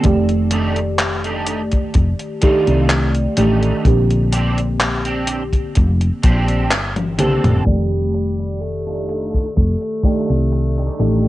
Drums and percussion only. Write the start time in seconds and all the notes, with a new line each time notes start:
0.04 kick, closed hi-hat
0.29 closed hi-hat
0.51 closed hi-hat
0.76 closed hi-hat
0.99 clap, closed hi-hat
1.24 closed hi-hat
1.47 closed hi-hat
1.72 kick, closed hi-hat
1.94 kick, closed hi-hat
2.19 closed hi-hat
2.42 kick, closed hi-hat
2.67 closed hi-hat
2.89 clap, closed hi-hat
3.14 closed hi-hat
3.37 closed hi-hat
3.63 closed hi-hat
3.85 kick, closed hi-hat
4.11 closed hi-hat
4.33 closed hi-hat
4.58 closed hi-hat
4.80 clap, closed hi-hat
5.05 closed hi-hat
5.27 closed hi-hat
5.53 kick, closed hi-hat
5.75 kick, closed hi-hat
6.01 closed hi-hat
6.23 kick, closed hi-hat
6.48 closed hi-hat
6.71 clap, closed hi-hat
6.96 closed hi-hat, high tom
7.19 closed hi-hat, mid tom
7.44 closed hi-hat, mid tom
7.66 kick, closed hi-hat
7.92 closed hi-hat
8.14 closed hi-hat
8.40 closed hi-hat
8.62 closed hi-hat
8.87 closed hi-hat
9.09 closed hi-hat
9.34 kick, closed hi-hat
9.57 kick, closed hi-hat
9.82 closed hi-hat
10.04 kick, closed hi-hat
10.30 closed hi-hat
10.52 closed hi-hat
10.78 closed hi-hat
11.00 closed hi-hat
11.25 closed hi-hat